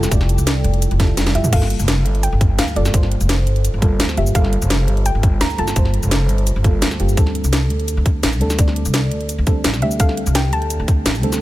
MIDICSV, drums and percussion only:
0, 0, Header, 1, 2, 480
1, 0, Start_track
1, 0, Tempo, 352941
1, 158, Time_signature, 4, 2, 24, 8
1, 15524, End_track
2, 0, Start_track
2, 0, Title_t, "Drums"
2, 42, Note_on_c, 9, 40, 48
2, 42, Note_on_c, 9, 82, 64
2, 156, Note_on_c, 9, 36, 115
2, 158, Note_off_c, 9, 82, 0
2, 158, Note_on_c, 9, 42, 94
2, 158, Note_on_c, 9, 82, 51
2, 178, Note_off_c, 9, 40, 0
2, 281, Note_on_c, 9, 40, 38
2, 292, Note_off_c, 9, 36, 0
2, 294, Note_off_c, 9, 42, 0
2, 294, Note_off_c, 9, 82, 0
2, 397, Note_on_c, 9, 42, 70
2, 397, Note_on_c, 9, 82, 28
2, 417, Note_off_c, 9, 40, 0
2, 521, Note_off_c, 9, 42, 0
2, 521, Note_off_c, 9, 82, 0
2, 521, Note_on_c, 9, 42, 39
2, 521, Note_on_c, 9, 82, 61
2, 637, Note_off_c, 9, 42, 0
2, 637, Note_off_c, 9, 82, 0
2, 637, Note_on_c, 9, 38, 115
2, 637, Note_on_c, 9, 42, 99
2, 637, Note_on_c, 9, 82, 53
2, 773, Note_off_c, 9, 38, 0
2, 773, Note_off_c, 9, 42, 0
2, 773, Note_off_c, 9, 82, 0
2, 876, Note_on_c, 9, 42, 67
2, 1001, Note_off_c, 9, 42, 0
2, 1001, Note_on_c, 9, 42, 39
2, 1116, Note_off_c, 9, 42, 0
2, 1116, Note_on_c, 9, 42, 96
2, 1116, Note_on_c, 9, 82, 52
2, 1239, Note_off_c, 9, 42, 0
2, 1239, Note_on_c, 9, 42, 38
2, 1252, Note_off_c, 9, 82, 0
2, 1356, Note_off_c, 9, 42, 0
2, 1356, Note_on_c, 9, 36, 101
2, 1356, Note_on_c, 9, 38, 62
2, 1356, Note_on_c, 9, 42, 67
2, 1356, Note_on_c, 9, 82, 28
2, 1492, Note_off_c, 9, 36, 0
2, 1492, Note_off_c, 9, 38, 0
2, 1492, Note_off_c, 9, 42, 0
2, 1492, Note_off_c, 9, 82, 0
2, 1595, Note_on_c, 9, 38, 78
2, 1595, Note_on_c, 9, 42, 98
2, 1595, Note_on_c, 9, 82, 50
2, 1720, Note_off_c, 9, 38, 0
2, 1720, Note_off_c, 9, 42, 0
2, 1720, Note_on_c, 9, 38, 71
2, 1720, Note_on_c, 9, 42, 41
2, 1731, Note_off_c, 9, 82, 0
2, 1836, Note_off_c, 9, 42, 0
2, 1836, Note_on_c, 9, 42, 71
2, 1856, Note_off_c, 9, 38, 0
2, 1960, Note_on_c, 9, 45, 91
2, 1960, Note_on_c, 9, 82, 64
2, 1972, Note_off_c, 9, 42, 0
2, 2076, Note_off_c, 9, 82, 0
2, 2076, Note_on_c, 9, 36, 118
2, 2076, Note_on_c, 9, 42, 96
2, 2076, Note_on_c, 9, 49, 103
2, 2076, Note_on_c, 9, 82, 50
2, 2096, Note_off_c, 9, 45, 0
2, 2201, Note_on_c, 9, 40, 38
2, 2212, Note_off_c, 9, 36, 0
2, 2212, Note_off_c, 9, 42, 0
2, 2212, Note_off_c, 9, 49, 0
2, 2212, Note_off_c, 9, 82, 0
2, 2317, Note_on_c, 9, 42, 71
2, 2337, Note_off_c, 9, 40, 0
2, 2441, Note_off_c, 9, 42, 0
2, 2441, Note_on_c, 9, 42, 39
2, 2441, Note_on_c, 9, 82, 59
2, 2557, Note_off_c, 9, 42, 0
2, 2557, Note_off_c, 9, 82, 0
2, 2557, Note_on_c, 9, 38, 118
2, 2557, Note_on_c, 9, 42, 95
2, 2557, Note_on_c, 9, 82, 51
2, 2693, Note_off_c, 9, 38, 0
2, 2693, Note_off_c, 9, 42, 0
2, 2693, Note_off_c, 9, 82, 0
2, 2796, Note_on_c, 9, 42, 70
2, 2921, Note_off_c, 9, 42, 0
2, 2921, Note_on_c, 9, 42, 40
2, 3037, Note_off_c, 9, 42, 0
2, 3037, Note_on_c, 9, 42, 99
2, 3037, Note_on_c, 9, 82, 50
2, 3173, Note_off_c, 9, 42, 0
2, 3173, Note_off_c, 9, 82, 0
2, 3277, Note_on_c, 9, 36, 110
2, 3277, Note_on_c, 9, 42, 67
2, 3277, Note_on_c, 9, 82, 28
2, 3413, Note_off_c, 9, 36, 0
2, 3413, Note_off_c, 9, 42, 0
2, 3413, Note_off_c, 9, 82, 0
2, 3517, Note_on_c, 9, 38, 116
2, 3517, Note_on_c, 9, 42, 96
2, 3517, Note_on_c, 9, 82, 50
2, 3642, Note_off_c, 9, 82, 0
2, 3642, Note_on_c, 9, 82, 27
2, 3653, Note_off_c, 9, 38, 0
2, 3653, Note_off_c, 9, 42, 0
2, 3758, Note_on_c, 9, 42, 67
2, 3778, Note_off_c, 9, 82, 0
2, 3881, Note_on_c, 9, 40, 50
2, 3881, Note_on_c, 9, 82, 58
2, 3894, Note_off_c, 9, 42, 0
2, 3996, Note_off_c, 9, 82, 0
2, 3996, Note_on_c, 9, 36, 119
2, 3996, Note_on_c, 9, 42, 90
2, 3996, Note_on_c, 9, 82, 48
2, 4017, Note_off_c, 9, 40, 0
2, 4120, Note_on_c, 9, 40, 39
2, 4132, Note_off_c, 9, 36, 0
2, 4132, Note_off_c, 9, 42, 0
2, 4132, Note_off_c, 9, 82, 0
2, 4236, Note_on_c, 9, 42, 65
2, 4256, Note_off_c, 9, 40, 0
2, 4361, Note_off_c, 9, 42, 0
2, 4361, Note_on_c, 9, 42, 38
2, 4361, Note_on_c, 9, 82, 57
2, 4477, Note_off_c, 9, 42, 0
2, 4477, Note_off_c, 9, 82, 0
2, 4477, Note_on_c, 9, 38, 125
2, 4477, Note_on_c, 9, 42, 96
2, 4477, Note_on_c, 9, 82, 48
2, 4613, Note_off_c, 9, 38, 0
2, 4613, Note_off_c, 9, 42, 0
2, 4613, Note_off_c, 9, 82, 0
2, 4718, Note_on_c, 9, 42, 66
2, 4842, Note_off_c, 9, 42, 0
2, 4842, Note_on_c, 9, 42, 37
2, 4958, Note_off_c, 9, 42, 0
2, 4958, Note_on_c, 9, 42, 96
2, 4958, Note_on_c, 9, 82, 49
2, 5094, Note_off_c, 9, 42, 0
2, 5094, Note_off_c, 9, 82, 0
2, 5196, Note_on_c, 9, 36, 111
2, 5198, Note_on_c, 9, 42, 67
2, 5198, Note_on_c, 9, 82, 27
2, 5332, Note_off_c, 9, 36, 0
2, 5334, Note_off_c, 9, 42, 0
2, 5334, Note_off_c, 9, 82, 0
2, 5437, Note_on_c, 9, 38, 122
2, 5437, Note_on_c, 9, 42, 92
2, 5437, Note_on_c, 9, 82, 47
2, 5562, Note_off_c, 9, 82, 0
2, 5562, Note_on_c, 9, 40, 50
2, 5562, Note_on_c, 9, 82, 27
2, 5573, Note_off_c, 9, 38, 0
2, 5573, Note_off_c, 9, 42, 0
2, 5677, Note_on_c, 9, 42, 67
2, 5698, Note_off_c, 9, 40, 0
2, 5698, Note_off_c, 9, 82, 0
2, 5801, Note_on_c, 9, 82, 59
2, 5813, Note_off_c, 9, 42, 0
2, 5916, Note_on_c, 9, 36, 127
2, 5917, Note_off_c, 9, 82, 0
2, 5917, Note_on_c, 9, 42, 89
2, 5917, Note_on_c, 9, 82, 48
2, 6042, Note_on_c, 9, 40, 37
2, 6052, Note_off_c, 9, 36, 0
2, 6053, Note_off_c, 9, 42, 0
2, 6053, Note_off_c, 9, 82, 0
2, 6157, Note_on_c, 9, 42, 64
2, 6178, Note_off_c, 9, 40, 0
2, 6281, Note_off_c, 9, 42, 0
2, 6281, Note_on_c, 9, 42, 37
2, 6281, Note_on_c, 9, 82, 58
2, 6396, Note_off_c, 9, 42, 0
2, 6396, Note_off_c, 9, 82, 0
2, 6396, Note_on_c, 9, 38, 125
2, 6396, Note_on_c, 9, 42, 91
2, 6396, Note_on_c, 9, 82, 47
2, 6532, Note_off_c, 9, 38, 0
2, 6532, Note_off_c, 9, 42, 0
2, 6532, Note_off_c, 9, 82, 0
2, 6637, Note_on_c, 9, 42, 66
2, 6761, Note_off_c, 9, 42, 0
2, 6761, Note_on_c, 9, 42, 36
2, 6877, Note_off_c, 9, 42, 0
2, 6877, Note_on_c, 9, 42, 95
2, 6877, Note_on_c, 9, 82, 48
2, 7013, Note_off_c, 9, 42, 0
2, 7013, Note_off_c, 9, 82, 0
2, 7116, Note_on_c, 9, 36, 114
2, 7116, Note_on_c, 9, 42, 62
2, 7116, Note_on_c, 9, 82, 26
2, 7252, Note_off_c, 9, 36, 0
2, 7252, Note_off_c, 9, 42, 0
2, 7252, Note_off_c, 9, 82, 0
2, 7356, Note_on_c, 9, 38, 124
2, 7356, Note_on_c, 9, 42, 90
2, 7356, Note_on_c, 9, 82, 48
2, 7479, Note_off_c, 9, 82, 0
2, 7479, Note_on_c, 9, 82, 27
2, 7492, Note_off_c, 9, 38, 0
2, 7492, Note_off_c, 9, 42, 0
2, 7594, Note_on_c, 9, 42, 63
2, 7615, Note_off_c, 9, 82, 0
2, 7719, Note_on_c, 9, 40, 51
2, 7719, Note_on_c, 9, 82, 58
2, 7730, Note_off_c, 9, 42, 0
2, 7834, Note_off_c, 9, 82, 0
2, 7834, Note_on_c, 9, 42, 88
2, 7834, Note_on_c, 9, 82, 48
2, 7836, Note_on_c, 9, 36, 123
2, 7855, Note_off_c, 9, 40, 0
2, 7958, Note_on_c, 9, 40, 37
2, 7970, Note_off_c, 9, 42, 0
2, 7970, Note_off_c, 9, 82, 0
2, 7972, Note_off_c, 9, 36, 0
2, 8073, Note_on_c, 9, 42, 63
2, 8094, Note_off_c, 9, 40, 0
2, 8198, Note_off_c, 9, 42, 0
2, 8198, Note_on_c, 9, 42, 36
2, 8198, Note_on_c, 9, 82, 60
2, 8315, Note_off_c, 9, 42, 0
2, 8315, Note_off_c, 9, 82, 0
2, 8315, Note_on_c, 9, 38, 127
2, 8315, Note_on_c, 9, 42, 89
2, 8315, Note_on_c, 9, 82, 48
2, 8451, Note_off_c, 9, 38, 0
2, 8451, Note_off_c, 9, 42, 0
2, 8451, Note_off_c, 9, 82, 0
2, 8555, Note_on_c, 9, 42, 64
2, 8555, Note_on_c, 9, 82, 27
2, 8680, Note_off_c, 9, 42, 0
2, 8680, Note_on_c, 9, 42, 35
2, 8691, Note_off_c, 9, 82, 0
2, 8796, Note_off_c, 9, 42, 0
2, 8796, Note_on_c, 9, 42, 92
2, 8796, Note_on_c, 9, 82, 49
2, 8932, Note_off_c, 9, 42, 0
2, 8932, Note_off_c, 9, 82, 0
2, 9035, Note_on_c, 9, 42, 63
2, 9035, Note_on_c, 9, 82, 27
2, 9036, Note_on_c, 9, 36, 112
2, 9171, Note_off_c, 9, 42, 0
2, 9171, Note_off_c, 9, 82, 0
2, 9172, Note_off_c, 9, 36, 0
2, 9275, Note_on_c, 9, 38, 120
2, 9275, Note_on_c, 9, 42, 86
2, 9275, Note_on_c, 9, 82, 47
2, 9400, Note_off_c, 9, 82, 0
2, 9400, Note_on_c, 9, 40, 47
2, 9400, Note_on_c, 9, 82, 26
2, 9411, Note_off_c, 9, 38, 0
2, 9411, Note_off_c, 9, 42, 0
2, 9516, Note_on_c, 9, 42, 64
2, 9536, Note_off_c, 9, 40, 0
2, 9536, Note_off_c, 9, 82, 0
2, 9640, Note_on_c, 9, 82, 57
2, 9652, Note_off_c, 9, 42, 0
2, 9756, Note_off_c, 9, 82, 0
2, 9756, Note_on_c, 9, 42, 89
2, 9756, Note_on_c, 9, 82, 50
2, 9757, Note_on_c, 9, 36, 115
2, 9880, Note_on_c, 9, 40, 35
2, 9892, Note_off_c, 9, 42, 0
2, 9892, Note_off_c, 9, 82, 0
2, 9893, Note_off_c, 9, 36, 0
2, 9997, Note_on_c, 9, 42, 61
2, 10016, Note_off_c, 9, 40, 0
2, 10121, Note_off_c, 9, 42, 0
2, 10121, Note_on_c, 9, 42, 36
2, 10121, Note_on_c, 9, 82, 62
2, 10237, Note_off_c, 9, 42, 0
2, 10237, Note_off_c, 9, 82, 0
2, 10237, Note_on_c, 9, 38, 122
2, 10237, Note_on_c, 9, 42, 86
2, 10237, Note_on_c, 9, 82, 50
2, 10373, Note_off_c, 9, 38, 0
2, 10373, Note_off_c, 9, 42, 0
2, 10373, Note_off_c, 9, 82, 0
2, 10476, Note_on_c, 9, 42, 65
2, 10602, Note_off_c, 9, 42, 0
2, 10602, Note_on_c, 9, 42, 36
2, 10718, Note_off_c, 9, 42, 0
2, 10718, Note_on_c, 9, 42, 89
2, 10718, Note_on_c, 9, 82, 49
2, 10854, Note_off_c, 9, 42, 0
2, 10854, Note_off_c, 9, 82, 0
2, 10957, Note_on_c, 9, 36, 110
2, 10957, Note_on_c, 9, 42, 64
2, 10957, Note_on_c, 9, 82, 28
2, 11093, Note_off_c, 9, 36, 0
2, 11093, Note_off_c, 9, 42, 0
2, 11093, Note_off_c, 9, 82, 0
2, 11197, Note_on_c, 9, 38, 122
2, 11197, Note_on_c, 9, 42, 88
2, 11197, Note_on_c, 9, 82, 47
2, 11322, Note_off_c, 9, 82, 0
2, 11322, Note_on_c, 9, 82, 28
2, 11333, Note_off_c, 9, 38, 0
2, 11333, Note_off_c, 9, 42, 0
2, 11437, Note_on_c, 9, 42, 64
2, 11458, Note_off_c, 9, 82, 0
2, 11561, Note_on_c, 9, 40, 47
2, 11561, Note_on_c, 9, 82, 61
2, 11573, Note_off_c, 9, 42, 0
2, 11677, Note_off_c, 9, 82, 0
2, 11677, Note_on_c, 9, 36, 116
2, 11677, Note_on_c, 9, 42, 91
2, 11677, Note_on_c, 9, 82, 51
2, 11697, Note_off_c, 9, 40, 0
2, 11800, Note_on_c, 9, 40, 36
2, 11813, Note_off_c, 9, 36, 0
2, 11813, Note_off_c, 9, 42, 0
2, 11813, Note_off_c, 9, 82, 0
2, 11916, Note_on_c, 9, 42, 65
2, 11936, Note_off_c, 9, 40, 0
2, 12040, Note_off_c, 9, 42, 0
2, 12040, Note_on_c, 9, 42, 36
2, 12040, Note_on_c, 9, 82, 62
2, 12155, Note_off_c, 9, 42, 0
2, 12155, Note_off_c, 9, 82, 0
2, 12155, Note_on_c, 9, 38, 116
2, 12155, Note_on_c, 9, 42, 94
2, 12155, Note_on_c, 9, 82, 51
2, 12291, Note_off_c, 9, 38, 0
2, 12291, Note_off_c, 9, 42, 0
2, 12291, Note_off_c, 9, 82, 0
2, 12396, Note_on_c, 9, 42, 66
2, 12520, Note_off_c, 9, 42, 0
2, 12520, Note_on_c, 9, 42, 37
2, 12635, Note_off_c, 9, 42, 0
2, 12635, Note_on_c, 9, 42, 94
2, 12635, Note_on_c, 9, 82, 52
2, 12771, Note_off_c, 9, 42, 0
2, 12771, Note_off_c, 9, 82, 0
2, 12875, Note_on_c, 9, 42, 67
2, 12875, Note_on_c, 9, 82, 30
2, 12878, Note_on_c, 9, 36, 102
2, 13011, Note_off_c, 9, 42, 0
2, 13011, Note_off_c, 9, 82, 0
2, 13014, Note_off_c, 9, 36, 0
2, 13116, Note_on_c, 9, 38, 118
2, 13116, Note_on_c, 9, 42, 92
2, 13116, Note_on_c, 9, 82, 51
2, 13240, Note_off_c, 9, 82, 0
2, 13240, Note_on_c, 9, 40, 46
2, 13240, Note_on_c, 9, 82, 30
2, 13252, Note_off_c, 9, 38, 0
2, 13252, Note_off_c, 9, 42, 0
2, 13355, Note_on_c, 9, 42, 66
2, 13376, Note_off_c, 9, 40, 0
2, 13376, Note_off_c, 9, 82, 0
2, 13480, Note_on_c, 9, 82, 64
2, 13491, Note_off_c, 9, 42, 0
2, 13596, Note_off_c, 9, 82, 0
2, 13596, Note_on_c, 9, 42, 94
2, 13596, Note_on_c, 9, 82, 53
2, 13598, Note_on_c, 9, 36, 115
2, 13720, Note_on_c, 9, 40, 36
2, 13732, Note_off_c, 9, 42, 0
2, 13732, Note_off_c, 9, 82, 0
2, 13734, Note_off_c, 9, 36, 0
2, 13836, Note_on_c, 9, 42, 69
2, 13856, Note_off_c, 9, 40, 0
2, 13960, Note_off_c, 9, 42, 0
2, 13960, Note_on_c, 9, 42, 37
2, 13960, Note_on_c, 9, 82, 62
2, 14076, Note_off_c, 9, 42, 0
2, 14076, Note_off_c, 9, 82, 0
2, 14076, Note_on_c, 9, 38, 112
2, 14076, Note_on_c, 9, 42, 97
2, 14076, Note_on_c, 9, 82, 53
2, 14212, Note_off_c, 9, 38, 0
2, 14212, Note_off_c, 9, 42, 0
2, 14212, Note_off_c, 9, 82, 0
2, 14317, Note_on_c, 9, 42, 69
2, 14441, Note_off_c, 9, 42, 0
2, 14441, Note_on_c, 9, 42, 38
2, 14557, Note_off_c, 9, 42, 0
2, 14557, Note_on_c, 9, 42, 98
2, 14557, Note_on_c, 9, 82, 52
2, 14693, Note_off_c, 9, 42, 0
2, 14693, Note_off_c, 9, 82, 0
2, 14798, Note_on_c, 9, 36, 102
2, 14798, Note_on_c, 9, 42, 67
2, 14798, Note_on_c, 9, 82, 29
2, 14934, Note_off_c, 9, 36, 0
2, 14934, Note_off_c, 9, 42, 0
2, 14934, Note_off_c, 9, 82, 0
2, 15038, Note_on_c, 9, 38, 114
2, 15038, Note_on_c, 9, 42, 96
2, 15038, Note_on_c, 9, 82, 52
2, 15161, Note_off_c, 9, 82, 0
2, 15161, Note_on_c, 9, 82, 30
2, 15174, Note_off_c, 9, 38, 0
2, 15174, Note_off_c, 9, 42, 0
2, 15277, Note_on_c, 9, 42, 70
2, 15297, Note_off_c, 9, 82, 0
2, 15401, Note_on_c, 9, 40, 48
2, 15401, Note_on_c, 9, 82, 62
2, 15413, Note_off_c, 9, 42, 0
2, 15524, Note_off_c, 9, 40, 0
2, 15524, Note_off_c, 9, 82, 0
2, 15524, End_track
0, 0, End_of_file